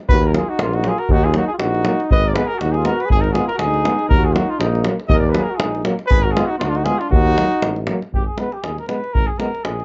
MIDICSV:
0, 0, Header, 1, 7, 480
1, 0, Start_track
1, 0, Key_signature, -6, "minor"
1, 0, Tempo, 504202
1, 82, Time_signature, 2, 2, 24, 8
1, 9375, End_track
2, 0, Start_track
2, 0, Title_t, "Cornet"
2, 0, Program_c, 0, 56
2, 86, Note_on_c, 0, 71, 125
2, 250, Note_on_c, 0, 70, 85
2, 264, Note_off_c, 0, 71, 0
2, 312, Note_off_c, 0, 70, 0
2, 329, Note_on_c, 0, 70, 61
2, 344, Note_on_c, 0, 68, 86
2, 358, Note_off_c, 0, 70, 0
2, 468, Note_on_c, 0, 66, 91
2, 482, Note_off_c, 0, 68, 0
2, 595, Note_on_c, 0, 65, 84
2, 609, Note_off_c, 0, 66, 0
2, 706, Note_on_c, 0, 66, 95
2, 720, Note_off_c, 0, 65, 0
2, 839, Note_on_c, 0, 68, 97
2, 853, Note_off_c, 0, 66, 0
2, 938, Note_on_c, 0, 70, 85
2, 952, Note_off_c, 0, 68, 0
2, 1060, Note_on_c, 0, 66, 115
2, 1075, Note_off_c, 0, 70, 0
2, 1180, Note_on_c, 0, 68, 93
2, 1195, Note_off_c, 0, 66, 0
2, 1303, Note_on_c, 0, 66, 97
2, 1317, Note_off_c, 0, 68, 0
2, 1400, Note_off_c, 0, 66, 0
2, 1406, Note_on_c, 0, 68, 87
2, 1454, Note_off_c, 0, 68, 0
2, 1507, Note_on_c, 0, 66, 97
2, 1956, Note_off_c, 0, 66, 0
2, 2006, Note_on_c, 0, 75, 127
2, 2167, Note_on_c, 0, 74, 84
2, 2181, Note_off_c, 0, 75, 0
2, 2232, Note_on_c, 0, 71, 105
2, 2246, Note_off_c, 0, 74, 0
2, 2353, Note_on_c, 0, 70, 102
2, 2367, Note_off_c, 0, 71, 0
2, 2466, Note_on_c, 0, 66, 89
2, 2480, Note_off_c, 0, 70, 0
2, 2590, Note_on_c, 0, 68, 99
2, 2605, Note_off_c, 0, 66, 0
2, 2714, Note_on_c, 0, 70, 89
2, 2728, Note_off_c, 0, 68, 0
2, 2862, Note_on_c, 0, 71, 92
2, 2876, Note_off_c, 0, 70, 0
2, 2948, Note_off_c, 0, 71, 0
2, 2954, Note_on_c, 0, 68, 125
2, 3059, Note_on_c, 0, 70, 89
2, 3073, Note_off_c, 0, 68, 0
2, 3168, Note_on_c, 0, 68, 103
2, 3182, Note_off_c, 0, 70, 0
2, 3301, Note_off_c, 0, 68, 0
2, 3307, Note_on_c, 0, 70, 93
2, 3402, Note_off_c, 0, 70, 0
2, 3408, Note_on_c, 0, 68, 106
2, 3862, Note_off_c, 0, 68, 0
2, 3891, Note_on_c, 0, 70, 113
2, 4044, Note_on_c, 0, 68, 84
2, 4058, Note_off_c, 0, 70, 0
2, 4120, Note_on_c, 0, 66, 93
2, 4135, Note_off_c, 0, 68, 0
2, 4281, Note_on_c, 0, 65, 81
2, 4295, Note_off_c, 0, 66, 0
2, 4373, Note_on_c, 0, 63, 74
2, 4388, Note_off_c, 0, 65, 0
2, 4619, Note_off_c, 0, 63, 0
2, 4838, Note_on_c, 0, 75, 117
2, 4931, Note_off_c, 0, 75, 0
2, 4937, Note_on_c, 0, 74, 88
2, 5042, Note_on_c, 0, 71, 89
2, 5056, Note_off_c, 0, 74, 0
2, 5172, Note_on_c, 0, 70, 84
2, 5186, Note_off_c, 0, 71, 0
2, 5288, Note_on_c, 0, 68, 74
2, 5303, Note_off_c, 0, 70, 0
2, 5555, Note_off_c, 0, 68, 0
2, 5776, Note_on_c, 0, 71, 126
2, 5924, Note_on_c, 0, 70, 97
2, 5939, Note_off_c, 0, 71, 0
2, 6013, Note_on_c, 0, 68, 94
2, 6027, Note_off_c, 0, 70, 0
2, 6148, Note_on_c, 0, 66, 97
2, 6162, Note_off_c, 0, 68, 0
2, 6261, Note_off_c, 0, 66, 0
2, 6266, Note_on_c, 0, 65, 96
2, 6323, Note_on_c, 0, 66, 87
2, 6338, Note_off_c, 0, 65, 0
2, 6371, Note_on_c, 0, 65, 101
2, 6385, Note_off_c, 0, 66, 0
2, 6438, Note_on_c, 0, 66, 84
2, 6453, Note_off_c, 0, 65, 0
2, 6515, Note_on_c, 0, 68, 114
2, 6529, Note_off_c, 0, 66, 0
2, 6653, Note_on_c, 0, 65, 80
2, 6668, Note_off_c, 0, 68, 0
2, 6756, Note_off_c, 0, 65, 0
2, 6762, Note_on_c, 0, 66, 120
2, 7457, Note_off_c, 0, 66, 0
2, 7753, Note_on_c, 0, 67, 83
2, 7856, Note_off_c, 0, 67, 0
2, 7862, Note_on_c, 0, 68, 68
2, 7989, Note_on_c, 0, 71, 80
2, 8003, Note_off_c, 0, 68, 0
2, 8119, Note_on_c, 0, 67, 65
2, 8133, Note_off_c, 0, 71, 0
2, 8210, Note_on_c, 0, 68, 75
2, 8225, Note_off_c, 0, 67, 0
2, 8356, Note_off_c, 0, 68, 0
2, 8371, Note_on_c, 0, 70, 67
2, 8447, Note_off_c, 0, 70, 0
2, 8453, Note_on_c, 0, 71, 80
2, 8693, Note_on_c, 0, 70, 99
2, 8707, Note_off_c, 0, 71, 0
2, 8826, Note_on_c, 0, 68, 75
2, 8840, Note_off_c, 0, 70, 0
2, 8933, Note_on_c, 0, 70, 81
2, 8947, Note_off_c, 0, 68, 0
2, 9178, Note_on_c, 0, 68, 75
2, 9192, Note_off_c, 0, 70, 0
2, 9375, Note_off_c, 0, 68, 0
2, 9375, End_track
3, 0, Start_track
3, 0, Title_t, "Flugelhorn"
3, 0, Program_c, 1, 56
3, 94, Note_on_c, 1, 66, 88
3, 207, Note_off_c, 1, 66, 0
3, 207, Note_on_c, 1, 66, 59
3, 290, Note_off_c, 1, 66, 0
3, 307, Note_on_c, 1, 66, 47
3, 341, Note_on_c, 1, 65, 82
3, 356, Note_off_c, 1, 66, 0
3, 468, Note_on_c, 1, 63, 68
3, 483, Note_off_c, 1, 65, 0
3, 579, Note_on_c, 1, 58, 78
3, 593, Note_off_c, 1, 63, 0
3, 702, Note_on_c, 1, 63, 73
3, 716, Note_off_c, 1, 58, 0
3, 799, Note_on_c, 1, 65, 75
3, 814, Note_off_c, 1, 63, 0
3, 947, Note_on_c, 1, 66, 78
3, 961, Note_off_c, 1, 65, 0
3, 1062, Note_on_c, 1, 63, 102
3, 1077, Note_off_c, 1, 66, 0
3, 1193, Note_on_c, 1, 65, 65
3, 1207, Note_off_c, 1, 63, 0
3, 1287, Note_on_c, 1, 63, 90
3, 1301, Note_off_c, 1, 65, 0
3, 1416, Note_off_c, 1, 63, 0
3, 1451, Note_on_c, 1, 65, 74
3, 1490, Note_off_c, 1, 65, 0
3, 1538, Note_on_c, 1, 63, 79
3, 1972, Note_off_c, 1, 63, 0
3, 2016, Note_on_c, 1, 71, 111
3, 2147, Note_on_c, 1, 70, 85
3, 2161, Note_off_c, 1, 71, 0
3, 2267, Note_on_c, 1, 68, 79
3, 2281, Note_off_c, 1, 70, 0
3, 2418, Note_on_c, 1, 66, 67
3, 2433, Note_off_c, 1, 68, 0
3, 2515, Note_on_c, 1, 63, 82
3, 2530, Note_off_c, 1, 66, 0
3, 2639, Note_on_c, 1, 65, 80
3, 2653, Note_off_c, 1, 63, 0
3, 2768, Note_on_c, 1, 66, 88
3, 2783, Note_off_c, 1, 65, 0
3, 2906, Note_on_c, 1, 68, 77
3, 2920, Note_off_c, 1, 66, 0
3, 2981, Note_off_c, 1, 68, 0
3, 3024, Note_on_c, 1, 63, 86
3, 3139, Note_on_c, 1, 66, 69
3, 3153, Note_off_c, 1, 63, 0
3, 3221, Note_on_c, 1, 65, 75
3, 3235, Note_off_c, 1, 66, 0
3, 3339, Note_off_c, 1, 65, 0
3, 3370, Note_on_c, 1, 66, 72
3, 3446, Note_off_c, 1, 66, 0
3, 3479, Note_on_c, 1, 63, 78
3, 3900, Note_off_c, 1, 63, 0
3, 3960, Note_on_c, 1, 66, 89
3, 4099, Note_on_c, 1, 65, 69
3, 4113, Note_off_c, 1, 66, 0
3, 4205, Note_on_c, 1, 63, 78
3, 4220, Note_off_c, 1, 65, 0
3, 4355, Note_on_c, 1, 62, 63
3, 4370, Note_off_c, 1, 63, 0
3, 4441, Note_on_c, 1, 58, 63
3, 4455, Note_off_c, 1, 62, 0
3, 4652, Note_off_c, 1, 58, 0
3, 4886, Note_on_c, 1, 70, 98
3, 5000, Note_off_c, 1, 70, 0
3, 5017, Note_on_c, 1, 70, 71
3, 5107, Note_on_c, 1, 68, 84
3, 5122, Note_off_c, 1, 70, 0
3, 5237, Note_on_c, 1, 66, 73
3, 5251, Note_off_c, 1, 68, 0
3, 5314, Note_on_c, 1, 63, 70
3, 5329, Note_off_c, 1, 66, 0
3, 5568, Note_off_c, 1, 63, 0
3, 5807, Note_on_c, 1, 68, 96
3, 5946, Note_on_c, 1, 66, 79
3, 5960, Note_off_c, 1, 68, 0
3, 6048, Note_on_c, 1, 65, 98
3, 6062, Note_off_c, 1, 66, 0
3, 6184, Note_on_c, 1, 63, 77
3, 6198, Note_off_c, 1, 65, 0
3, 6262, Note_off_c, 1, 63, 0
3, 6268, Note_on_c, 1, 59, 76
3, 6312, Note_on_c, 1, 63, 63
3, 6327, Note_off_c, 1, 59, 0
3, 6356, Note_on_c, 1, 62, 80
3, 6371, Note_off_c, 1, 63, 0
3, 6429, Note_on_c, 1, 63, 63
3, 6444, Note_off_c, 1, 62, 0
3, 6522, Note_on_c, 1, 65, 72
3, 6537, Note_off_c, 1, 63, 0
3, 6671, Note_on_c, 1, 62, 62
3, 6686, Note_off_c, 1, 65, 0
3, 6780, Note_off_c, 1, 62, 0
3, 6789, Note_on_c, 1, 63, 98
3, 7471, Note_off_c, 1, 63, 0
3, 9375, End_track
4, 0, Start_track
4, 0, Title_t, "Euphonium"
4, 0, Program_c, 2, 58
4, 330, Note_on_c, 2, 58, 60
4, 424, Note_off_c, 2, 58, 0
4, 814, Note_on_c, 2, 58, 61
4, 906, Note_off_c, 2, 58, 0
4, 1288, Note_on_c, 2, 58, 63
4, 1381, Note_off_c, 2, 58, 0
4, 1781, Note_on_c, 2, 58, 67
4, 1871, Note_off_c, 2, 58, 0
4, 2243, Note_on_c, 2, 59, 66
4, 2337, Note_off_c, 2, 59, 0
4, 2713, Note_on_c, 2, 59, 66
4, 2808, Note_off_c, 2, 59, 0
4, 3202, Note_on_c, 2, 59, 64
4, 3295, Note_off_c, 2, 59, 0
4, 3668, Note_on_c, 2, 59, 55
4, 3764, Note_off_c, 2, 59, 0
4, 4157, Note_on_c, 2, 58, 54
4, 4250, Note_off_c, 2, 58, 0
4, 4634, Note_on_c, 2, 58, 54
4, 4728, Note_off_c, 2, 58, 0
4, 5100, Note_on_c, 2, 58, 68
4, 5196, Note_off_c, 2, 58, 0
4, 5579, Note_on_c, 2, 58, 66
4, 5676, Note_off_c, 2, 58, 0
4, 6052, Note_on_c, 2, 59, 67
4, 6150, Note_off_c, 2, 59, 0
4, 6526, Note_on_c, 2, 59, 52
4, 6626, Note_off_c, 2, 59, 0
4, 7016, Note_on_c, 2, 58, 62
4, 7114, Note_off_c, 2, 58, 0
4, 7501, Note_on_c, 2, 58, 53
4, 7599, Note_off_c, 2, 58, 0
4, 7988, Note_on_c, 2, 59, 46
4, 8085, Note_off_c, 2, 59, 0
4, 8458, Note_on_c, 2, 59, 46
4, 8557, Note_off_c, 2, 59, 0
4, 8946, Note_on_c, 2, 59, 50
4, 9045, Note_off_c, 2, 59, 0
4, 9375, End_track
5, 0, Start_track
5, 0, Title_t, "Trombone"
5, 0, Program_c, 3, 57
5, 309, Note_on_c, 3, 54, 59
5, 407, Note_off_c, 3, 54, 0
5, 787, Note_on_c, 3, 54, 66
5, 885, Note_off_c, 3, 54, 0
5, 1279, Note_on_c, 3, 54, 70
5, 1374, Note_off_c, 3, 54, 0
5, 1754, Note_on_c, 3, 54, 72
5, 1849, Note_off_c, 3, 54, 0
5, 2234, Note_on_c, 3, 56, 72
5, 2330, Note_off_c, 3, 56, 0
5, 2706, Note_on_c, 3, 56, 70
5, 2803, Note_off_c, 3, 56, 0
5, 3194, Note_on_c, 3, 56, 62
5, 3288, Note_off_c, 3, 56, 0
5, 3669, Note_on_c, 3, 56, 62
5, 3764, Note_off_c, 3, 56, 0
5, 4135, Note_on_c, 3, 54, 59
5, 4233, Note_off_c, 3, 54, 0
5, 4612, Note_on_c, 3, 54, 65
5, 4710, Note_off_c, 3, 54, 0
5, 5097, Note_on_c, 3, 54, 70
5, 5194, Note_off_c, 3, 54, 0
5, 5568, Note_on_c, 3, 54, 71
5, 5667, Note_off_c, 3, 54, 0
5, 6063, Note_on_c, 3, 56, 76
5, 6159, Note_off_c, 3, 56, 0
5, 6539, Note_on_c, 3, 56, 58
5, 6636, Note_off_c, 3, 56, 0
5, 7030, Note_on_c, 3, 54, 64
5, 7125, Note_off_c, 3, 54, 0
5, 7514, Note_on_c, 3, 54, 62
5, 7609, Note_off_c, 3, 54, 0
5, 7974, Note_on_c, 3, 56, 46
5, 8073, Note_off_c, 3, 56, 0
5, 8459, Note_on_c, 3, 56, 54
5, 8558, Note_off_c, 3, 56, 0
5, 8939, Note_on_c, 3, 56, 60
5, 9039, Note_off_c, 3, 56, 0
5, 9375, End_track
6, 0, Start_track
6, 0, Title_t, "Tuba"
6, 0, Program_c, 4, 58
6, 97, Note_on_c, 4, 39, 111
6, 356, Note_off_c, 4, 39, 0
6, 594, Note_on_c, 4, 34, 90
6, 847, Note_off_c, 4, 34, 0
6, 1039, Note_on_c, 4, 39, 112
6, 1302, Note_off_c, 4, 39, 0
6, 1519, Note_on_c, 4, 34, 88
6, 1781, Note_off_c, 4, 34, 0
6, 2003, Note_on_c, 4, 32, 109
6, 2263, Note_off_c, 4, 32, 0
6, 2478, Note_on_c, 4, 39, 91
6, 2739, Note_off_c, 4, 39, 0
6, 2953, Note_on_c, 4, 32, 108
6, 3215, Note_off_c, 4, 32, 0
6, 3419, Note_on_c, 4, 38, 86
6, 3685, Note_off_c, 4, 38, 0
6, 3894, Note_on_c, 4, 39, 96
6, 4161, Note_off_c, 4, 39, 0
6, 4373, Note_on_c, 4, 34, 87
6, 4639, Note_off_c, 4, 34, 0
6, 4839, Note_on_c, 4, 39, 116
6, 5109, Note_off_c, 4, 39, 0
6, 5335, Note_on_c, 4, 34, 76
6, 5601, Note_off_c, 4, 34, 0
6, 5817, Note_on_c, 4, 32, 106
6, 6082, Note_off_c, 4, 32, 0
6, 6301, Note_on_c, 4, 38, 84
6, 6566, Note_off_c, 4, 38, 0
6, 6767, Note_on_c, 4, 39, 123
6, 7037, Note_off_c, 4, 39, 0
6, 7258, Note_on_c, 4, 33, 83
6, 7525, Note_off_c, 4, 33, 0
6, 7734, Note_on_c, 4, 32, 70
6, 7871, Note_off_c, 4, 32, 0
6, 8225, Note_on_c, 4, 39, 63
6, 8359, Note_off_c, 4, 39, 0
6, 8696, Note_on_c, 4, 32, 77
6, 8834, Note_off_c, 4, 32, 0
6, 9201, Note_on_c, 4, 34, 74
6, 9333, Note_off_c, 4, 34, 0
6, 9375, End_track
7, 0, Start_track
7, 0, Title_t, "Davul"
7, 84, Note_on_c, 9, 43, 109
7, 179, Note_off_c, 9, 43, 0
7, 329, Note_on_c, 9, 37, 69
7, 424, Note_off_c, 9, 37, 0
7, 562, Note_on_c, 9, 37, 85
7, 658, Note_off_c, 9, 37, 0
7, 699, Note_on_c, 9, 37, 24
7, 794, Note_off_c, 9, 37, 0
7, 798, Note_on_c, 9, 37, 61
7, 893, Note_off_c, 9, 37, 0
7, 935, Note_on_c, 9, 37, 21
7, 1030, Note_off_c, 9, 37, 0
7, 1036, Note_on_c, 9, 43, 90
7, 1131, Note_off_c, 9, 43, 0
7, 1274, Note_on_c, 9, 37, 64
7, 1369, Note_off_c, 9, 37, 0
7, 1519, Note_on_c, 9, 37, 81
7, 1614, Note_off_c, 9, 37, 0
7, 1663, Note_on_c, 9, 37, 23
7, 1758, Note_off_c, 9, 37, 0
7, 1758, Note_on_c, 9, 37, 74
7, 1854, Note_off_c, 9, 37, 0
7, 1904, Note_on_c, 9, 37, 26
7, 1999, Note_off_c, 9, 37, 0
7, 2006, Note_on_c, 9, 43, 107
7, 2101, Note_off_c, 9, 43, 0
7, 2243, Note_on_c, 9, 37, 81
7, 2338, Note_off_c, 9, 37, 0
7, 2484, Note_on_c, 9, 37, 69
7, 2579, Note_off_c, 9, 37, 0
7, 2610, Note_on_c, 9, 37, 22
7, 2705, Note_off_c, 9, 37, 0
7, 2713, Note_on_c, 9, 37, 71
7, 2808, Note_off_c, 9, 37, 0
7, 2858, Note_on_c, 9, 37, 28
7, 2952, Note_on_c, 9, 43, 96
7, 2953, Note_off_c, 9, 37, 0
7, 3048, Note_off_c, 9, 43, 0
7, 3083, Note_on_c, 9, 37, 30
7, 3178, Note_off_c, 9, 37, 0
7, 3191, Note_on_c, 9, 37, 66
7, 3286, Note_off_c, 9, 37, 0
7, 3325, Note_on_c, 9, 37, 26
7, 3420, Note_off_c, 9, 37, 0
7, 3420, Note_on_c, 9, 37, 77
7, 3515, Note_off_c, 9, 37, 0
7, 3560, Note_on_c, 9, 37, 25
7, 3655, Note_off_c, 9, 37, 0
7, 3668, Note_on_c, 9, 37, 71
7, 3764, Note_off_c, 9, 37, 0
7, 3799, Note_on_c, 9, 37, 22
7, 3894, Note_off_c, 9, 37, 0
7, 3908, Note_on_c, 9, 43, 110
7, 4003, Note_off_c, 9, 43, 0
7, 4148, Note_on_c, 9, 37, 70
7, 4243, Note_off_c, 9, 37, 0
7, 4384, Note_on_c, 9, 37, 80
7, 4480, Note_off_c, 9, 37, 0
7, 4524, Note_on_c, 9, 37, 29
7, 4612, Note_off_c, 9, 37, 0
7, 4612, Note_on_c, 9, 37, 78
7, 4708, Note_off_c, 9, 37, 0
7, 4756, Note_on_c, 9, 37, 29
7, 4850, Note_on_c, 9, 43, 119
7, 4852, Note_off_c, 9, 37, 0
7, 4946, Note_off_c, 9, 43, 0
7, 5089, Note_on_c, 9, 37, 80
7, 5184, Note_off_c, 9, 37, 0
7, 5329, Note_on_c, 9, 37, 92
7, 5424, Note_off_c, 9, 37, 0
7, 5472, Note_on_c, 9, 37, 27
7, 5568, Note_off_c, 9, 37, 0
7, 5568, Note_on_c, 9, 37, 76
7, 5664, Note_off_c, 9, 37, 0
7, 5702, Note_on_c, 9, 37, 29
7, 5797, Note_off_c, 9, 37, 0
7, 5813, Note_on_c, 9, 43, 105
7, 5908, Note_off_c, 9, 43, 0
7, 6062, Note_on_c, 9, 37, 78
7, 6157, Note_off_c, 9, 37, 0
7, 6294, Note_on_c, 9, 37, 81
7, 6389, Note_off_c, 9, 37, 0
7, 6426, Note_on_c, 9, 37, 25
7, 6521, Note_off_c, 9, 37, 0
7, 6528, Note_on_c, 9, 37, 68
7, 6623, Note_off_c, 9, 37, 0
7, 6672, Note_on_c, 9, 37, 28
7, 6767, Note_off_c, 9, 37, 0
7, 6780, Note_on_c, 9, 43, 100
7, 6875, Note_off_c, 9, 43, 0
7, 6923, Note_on_c, 9, 37, 25
7, 7018, Note_off_c, 9, 37, 0
7, 7024, Note_on_c, 9, 37, 74
7, 7119, Note_off_c, 9, 37, 0
7, 7157, Note_on_c, 9, 37, 27
7, 7252, Note_off_c, 9, 37, 0
7, 7258, Note_on_c, 9, 37, 84
7, 7353, Note_off_c, 9, 37, 0
7, 7390, Note_on_c, 9, 37, 22
7, 7485, Note_off_c, 9, 37, 0
7, 7490, Note_on_c, 9, 37, 71
7, 7586, Note_off_c, 9, 37, 0
7, 7639, Note_on_c, 9, 37, 26
7, 7734, Note_off_c, 9, 37, 0
7, 7746, Note_on_c, 9, 43, 77
7, 7842, Note_off_c, 9, 43, 0
7, 7975, Note_on_c, 9, 37, 58
7, 8070, Note_off_c, 9, 37, 0
7, 8114, Note_on_c, 9, 37, 21
7, 8209, Note_off_c, 9, 37, 0
7, 8223, Note_on_c, 9, 37, 65
7, 8318, Note_off_c, 9, 37, 0
7, 8363, Note_on_c, 9, 37, 21
7, 8458, Note_off_c, 9, 37, 0
7, 8463, Note_on_c, 9, 37, 59
7, 8558, Note_off_c, 9, 37, 0
7, 8605, Note_on_c, 9, 37, 18
7, 8700, Note_off_c, 9, 37, 0
7, 8710, Note_on_c, 9, 43, 87
7, 8805, Note_off_c, 9, 43, 0
7, 8946, Note_on_c, 9, 37, 58
7, 9041, Note_off_c, 9, 37, 0
7, 9088, Note_on_c, 9, 37, 23
7, 9183, Note_off_c, 9, 37, 0
7, 9185, Note_on_c, 9, 37, 69
7, 9280, Note_off_c, 9, 37, 0
7, 9328, Note_on_c, 9, 37, 19
7, 9375, Note_off_c, 9, 37, 0
7, 9375, End_track
0, 0, End_of_file